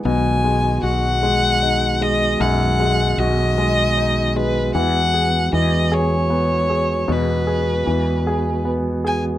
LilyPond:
<<
  \new Staff \with { instrumentName = "Violin" } { \time 6/8 \key b \major \tempo 4. = 51 gis''4 fis''4. dis''8 | fis''4 dis''4. b'8 | fis''4 dis''8 cis''4. | b'2 r8 gis''8 | }
  \new Staff \with { instrumentName = "Grand piano" } { \time 6/8 \key b \major b,8 gis8 fis'8 gis8 dis'8 gis8 | fis,8 gis8 fis'8 gis8 dis'8 gis8 | e8 gis'8 e8 gis'8 b8 gis'8 | b,8 gis'8 e8 gis'8 b8 gis'8 | }
  \new Staff \with { instrumentName = "Tonewheel organ" } { \time 6/8 \key b \major <gis fis'>2.~ | <gis fis'>2.~ | <gis fis'>2.~ | <gis fis'>2. | }
  \new Staff \with { instrumentName = "Tonewheel organ" } { \clef bass \time 6/8 \key b \major << { b2.~ | b2.~ | b2. | b2. | } \\ { dis2.~ | dis2. | e2.~ | e2. | } >> }
  \new Staff \with { instrumentName = "Fretless electric bass" } { \clef bass \time 6/8 \key b \major b,,4 b,,2 | b,,4 b,,2 | e,4 e,2 | e,4 e,2 | }
>>